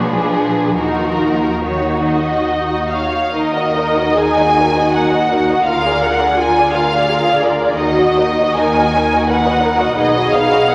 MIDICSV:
0, 0, Header, 1, 6, 480
1, 0, Start_track
1, 0, Key_signature, -6, "minor"
1, 0, Tempo, 848656
1, 450, Time_signature, 3, 2, 24, 8
1, 2372, Tempo, 754717
1, 2852, Tempo, 711744
1, 4772, Tempo, 790514
1, 5252, Tempo, 708383
1, 6718, End_track
2, 0, Start_track
2, 0, Title_t, "Violin section"
2, 0, Program_c, 0, 48
2, 0, Note_on_c, 0, 71, 43
2, 434, Note_on_c, 0, 70, 45
2, 446, Note_off_c, 0, 71, 0
2, 915, Note_off_c, 0, 70, 0
2, 927, Note_on_c, 0, 73, 46
2, 1150, Note_off_c, 0, 73, 0
2, 1172, Note_on_c, 0, 75, 43
2, 1646, Note_on_c, 0, 73, 46
2, 1648, Note_on_c, 0, 77, 42
2, 1657, Note_off_c, 0, 75, 0
2, 1871, Note_off_c, 0, 73, 0
2, 1889, Note_off_c, 0, 77, 0
2, 1893, Note_on_c, 0, 75, 55
2, 2370, Note_off_c, 0, 75, 0
2, 2373, Note_on_c, 0, 80, 71
2, 2847, Note_on_c, 0, 78, 55
2, 2852, Note_off_c, 0, 80, 0
2, 3321, Note_on_c, 0, 77, 65
2, 3331, Note_off_c, 0, 78, 0
2, 3566, Note_off_c, 0, 77, 0
2, 3581, Note_on_c, 0, 78, 60
2, 3817, Note_on_c, 0, 80, 66
2, 3822, Note_off_c, 0, 78, 0
2, 4053, Note_on_c, 0, 77, 70
2, 4058, Note_off_c, 0, 80, 0
2, 4528, Note_off_c, 0, 77, 0
2, 4530, Note_on_c, 0, 74, 58
2, 4763, Note_on_c, 0, 75, 65
2, 4770, Note_off_c, 0, 74, 0
2, 5243, Note_on_c, 0, 80, 77
2, 5247, Note_off_c, 0, 75, 0
2, 5720, Note_on_c, 0, 78, 61
2, 5728, Note_off_c, 0, 80, 0
2, 6196, Note_off_c, 0, 78, 0
2, 6207, Note_on_c, 0, 75, 67
2, 6435, Note_on_c, 0, 77, 72
2, 6443, Note_off_c, 0, 75, 0
2, 6685, Note_off_c, 0, 77, 0
2, 6689, Note_on_c, 0, 78, 69
2, 6718, Note_off_c, 0, 78, 0
2, 6718, End_track
3, 0, Start_track
3, 0, Title_t, "Viola section"
3, 0, Program_c, 1, 48
3, 0, Note_on_c, 1, 62, 46
3, 443, Note_on_c, 1, 63, 43
3, 447, Note_off_c, 1, 62, 0
3, 920, Note_off_c, 1, 63, 0
3, 938, Note_on_c, 1, 63, 39
3, 1759, Note_off_c, 1, 63, 0
3, 1887, Note_on_c, 1, 70, 51
3, 2345, Note_off_c, 1, 70, 0
3, 2368, Note_on_c, 1, 68, 43
3, 2611, Note_on_c, 1, 66, 45
3, 2616, Note_off_c, 1, 68, 0
3, 3328, Note_on_c, 1, 70, 49
3, 3330, Note_off_c, 1, 66, 0
3, 3808, Note_off_c, 1, 70, 0
3, 3818, Note_on_c, 1, 65, 46
3, 4296, Note_off_c, 1, 65, 0
3, 4300, Note_on_c, 1, 68, 46
3, 4530, Note_on_c, 1, 70, 48
3, 4533, Note_off_c, 1, 68, 0
3, 4763, Note_on_c, 1, 66, 51
3, 4770, Note_off_c, 1, 70, 0
3, 5248, Note_off_c, 1, 66, 0
3, 5248, Note_on_c, 1, 70, 51
3, 5731, Note_off_c, 1, 70, 0
3, 5735, Note_on_c, 1, 71, 52
3, 5966, Note_off_c, 1, 71, 0
3, 5973, Note_on_c, 1, 70, 47
3, 6206, Note_off_c, 1, 70, 0
3, 6212, Note_on_c, 1, 68, 58
3, 6718, Note_off_c, 1, 68, 0
3, 6718, End_track
4, 0, Start_track
4, 0, Title_t, "Violin section"
4, 0, Program_c, 2, 48
4, 0, Note_on_c, 2, 68, 44
4, 443, Note_on_c, 2, 66, 42
4, 448, Note_off_c, 2, 68, 0
4, 918, Note_off_c, 2, 66, 0
4, 925, Note_on_c, 2, 66, 45
4, 1752, Note_off_c, 2, 66, 0
4, 1891, Note_on_c, 2, 63, 38
4, 1893, Note_on_c, 2, 70, 39
4, 1998, Note_off_c, 2, 63, 0
4, 2000, Note_off_c, 2, 70, 0
4, 2002, Note_on_c, 2, 66, 34
4, 2003, Note_on_c, 2, 75, 35
4, 2127, Note_off_c, 2, 66, 0
4, 2127, Note_off_c, 2, 75, 0
4, 2129, Note_on_c, 2, 70, 34
4, 2130, Note_on_c, 2, 63, 33
4, 2250, Note_on_c, 2, 66, 35
4, 2251, Note_on_c, 2, 75, 35
4, 2252, Note_off_c, 2, 70, 0
4, 2253, Note_off_c, 2, 63, 0
4, 2364, Note_on_c, 2, 63, 40
4, 2366, Note_on_c, 2, 70, 41
4, 2369, Note_off_c, 2, 66, 0
4, 2369, Note_off_c, 2, 75, 0
4, 2484, Note_off_c, 2, 63, 0
4, 2485, Note_off_c, 2, 70, 0
4, 2499, Note_on_c, 2, 75, 36
4, 2502, Note_on_c, 2, 66, 36
4, 2611, Note_on_c, 2, 63, 37
4, 2611, Note_on_c, 2, 70, 37
4, 2618, Note_off_c, 2, 75, 0
4, 2620, Note_off_c, 2, 66, 0
4, 2729, Note_on_c, 2, 66, 35
4, 2731, Note_off_c, 2, 63, 0
4, 2731, Note_off_c, 2, 70, 0
4, 2731, Note_on_c, 2, 75, 36
4, 2848, Note_off_c, 2, 66, 0
4, 2849, Note_off_c, 2, 75, 0
4, 2851, Note_on_c, 2, 70, 34
4, 2853, Note_on_c, 2, 63, 36
4, 2964, Note_off_c, 2, 70, 0
4, 2965, Note_off_c, 2, 63, 0
4, 2972, Note_on_c, 2, 66, 34
4, 2977, Note_on_c, 2, 75, 34
4, 3092, Note_off_c, 2, 66, 0
4, 3095, Note_off_c, 2, 75, 0
4, 3095, Note_on_c, 2, 63, 36
4, 3098, Note_on_c, 2, 70, 36
4, 3214, Note_off_c, 2, 63, 0
4, 3215, Note_off_c, 2, 70, 0
4, 3224, Note_on_c, 2, 75, 36
4, 3225, Note_on_c, 2, 66, 34
4, 3339, Note_off_c, 2, 75, 0
4, 3340, Note_off_c, 2, 66, 0
4, 3342, Note_on_c, 2, 65, 41
4, 3343, Note_on_c, 2, 70, 41
4, 3451, Note_off_c, 2, 65, 0
4, 3452, Note_off_c, 2, 70, 0
4, 3457, Note_on_c, 2, 68, 36
4, 3458, Note_on_c, 2, 74, 36
4, 3577, Note_on_c, 2, 65, 37
4, 3578, Note_off_c, 2, 68, 0
4, 3579, Note_off_c, 2, 74, 0
4, 3579, Note_on_c, 2, 70, 38
4, 3699, Note_off_c, 2, 65, 0
4, 3699, Note_on_c, 2, 68, 36
4, 3699, Note_on_c, 2, 74, 38
4, 3700, Note_off_c, 2, 70, 0
4, 3820, Note_off_c, 2, 68, 0
4, 3820, Note_off_c, 2, 74, 0
4, 3833, Note_on_c, 2, 65, 39
4, 3834, Note_on_c, 2, 70, 40
4, 3939, Note_off_c, 2, 65, 0
4, 3939, Note_off_c, 2, 70, 0
4, 3946, Note_on_c, 2, 74, 37
4, 3951, Note_on_c, 2, 68, 37
4, 4061, Note_on_c, 2, 70, 38
4, 4063, Note_off_c, 2, 74, 0
4, 4065, Note_off_c, 2, 68, 0
4, 4065, Note_on_c, 2, 65, 39
4, 4179, Note_off_c, 2, 70, 0
4, 4181, Note_off_c, 2, 65, 0
4, 4188, Note_on_c, 2, 68, 36
4, 4189, Note_on_c, 2, 74, 38
4, 4302, Note_off_c, 2, 68, 0
4, 4302, Note_off_c, 2, 74, 0
4, 4303, Note_on_c, 2, 65, 38
4, 4305, Note_on_c, 2, 70, 37
4, 4410, Note_off_c, 2, 65, 0
4, 4411, Note_off_c, 2, 70, 0
4, 4425, Note_on_c, 2, 74, 35
4, 4429, Note_on_c, 2, 68, 35
4, 4537, Note_off_c, 2, 74, 0
4, 4538, Note_on_c, 2, 65, 37
4, 4539, Note_off_c, 2, 68, 0
4, 4539, Note_on_c, 2, 70, 36
4, 4653, Note_off_c, 2, 65, 0
4, 4654, Note_off_c, 2, 70, 0
4, 4656, Note_on_c, 2, 74, 35
4, 4660, Note_on_c, 2, 68, 35
4, 4772, Note_on_c, 2, 63, 39
4, 4773, Note_on_c, 2, 70, 40
4, 4774, Note_off_c, 2, 74, 0
4, 4776, Note_off_c, 2, 68, 0
4, 4878, Note_off_c, 2, 63, 0
4, 4879, Note_off_c, 2, 70, 0
4, 4888, Note_on_c, 2, 75, 36
4, 4890, Note_on_c, 2, 66, 37
4, 5005, Note_on_c, 2, 70, 37
4, 5006, Note_on_c, 2, 63, 38
4, 5009, Note_off_c, 2, 75, 0
4, 5010, Note_off_c, 2, 66, 0
4, 5131, Note_off_c, 2, 63, 0
4, 5131, Note_off_c, 2, 70, 0
4, 5141, Note_on_c, 2, 66, 39
4, 5142, Note_on_c, 2, 75, 39
4, 5253, Note_on_c, 2, 63, 44
4, 5255, Note_on_c, 2, 70, 45
4, 5256, Note_off_c, 2, 66, 0
4, 5256, Note_off_c, 2, 75, 0
4, 5368, Note_on_c, 2, 75, 40
4, 5370, Note_off_c, 2, 63, 0
4, 5370, Note_on_c, 2, 66, 39
4, 5371, Note_off_c, 2, 70, 0
4, 5494, Note_off_c, 2, 75, 0
4, 5495, Note_off_c, 2, 66, 0
4, 5500, Note_on_c, 2, 70, 40
4, 5503, Note_on_c, 2, 63, 42
4, 5616, Note_off_c, 2, 70, 0
4, 5618, Note_off_c, 2, 63, 0
4, 5623, Note_on_c, 2, 75, 40
4, 5625, Note_on_c, 2, 66, 43
4, 5731, Note_on_c, 2, 70, 40
4, 5736, Note_off_c, 2, 75, 0
4, 5737, Note_off_c, 2, 66, 0
4, 5738, Note_on_c, 2, 63, 43
4, 5840, Note_off_c, 2, 70, 0
4, 5843, Note_off_c, 2, 63, 0
4, 5844, Note_on_c, 2, 75, 38
4, 5847, Note_on_c, 2, 66, 38
4, 5955, Note_on_c, 2, 70, 41
4, 5956, Note_on_c, 2, 63, 43
4, 5963, Note_off_c, 2, 75, 0
4, 5965, Note_off_c, 2, 66, 0
4, 6066, Note_on_c, 2, 66, 40
4, 6067, Note_on_c, 2, 75, 44
4, 6078, Note_off_c, 2, 63, 0
4, 6078, Note_off_c, 2, 70, 0
4, 6190, Note_on_c, 2, 63, 43
4, 6190, Note_on_c, 2, 71, 44
4, 6194, Note_off_c, 2, 66, 0
4, 6195, Note_off_c, 2, 75, 0
4, 6308, Note_off_c, 2, 63, 0
4, 6308, Note_off_c, 2, 71, 0
4, 6318, Note_on_c, 2, 66, 43
4, 6323, Note_on_c, 2, 75, 42
4, 6441, Note_on_c, 2, 71, 44
4, 6442, Note_off_c, 2, 66, 0
4, 6444, Note_on_c, 2, 63, 46
4, 6445, Note_off_c, 2, 75, 0
4, 6558, Note_on_c, 2, 66, 47
4, 6562, Note_on_c, 2, 75, 44
4, 6566, Note_off_c, 2, 71, 0
4, 6567, Note_off_c, 2, 63, 0
4, 6679, Note_on_c, 2, 71, 46
4, 6683, Note_on_c, 2, 63, 51
4, 6686, Note_off_c, 2, 66, 0
4, 6688, Note_off_c, 2, 75, 0
4, 6718, Note_off_c, 2, 63, 0
4, 6718, Note_off_c, 2, 71, 0
4, 6718, End_track
5, 0, Start_track
5, 0, Title_t, "Cello section"
5, 0, Program_c, 3, 48
5, 0, Note_on_c, 3, 53, 60
5, 437, Note_off_c, 3, 53, 0
5, 444, Note_on_c, 3, 53, 53
5, 920, Note_off_c, 3, 53, 0
5, 925, Note_on_c, 3, 51, 45
5, 1405, Note_off_c, 3, 51, 0
5, 1886, Note_on_c, 3, 51, 45
5, 3302, Note_off_c, 3, 51, 0
5, 3332, Note_on_c, 3, 50, 44
5, 4743, Note_off_c, 3, 50, 0
5, 4768, Note_on_c, 3, 51, 46
5, 6174, Note_off_c, 3, 51, 0
5, 6199, Note_on_c, 3, 47, 52
5, 6718, Note_off_c, 3, 47, 0
5, 6718, End_track
6, 0, Start_track
6, 0, Title_t, "Double bass section"
6, 0, Program_c, 4, 48
6, 0, Note_on_c, 4, 34, 44
6, 448, Note_off_c, 4, 34, 0
6, 448, Note_on_c, 4, 39, 43
6, 1750, Note_off_c, 4, 39, 0
6, 1892, Note_on_c, 4, 39, 46
6, 3305, Note_off_c, 4, 39, 0
6, 3339, Note_on_c, 4, 38, 42
6, 4747, Note_off_c, 4, 38, 0
6, 4763, Note_on_c, 4, 39, 49
6, 6171, Note_off_c, 4, 39, 0
6, 6201, Note_on_c, 4, 35, 53
6, 6718, Note_off_c, 4, 35, 0
6, 6718, End_track
0, 0, End_of_file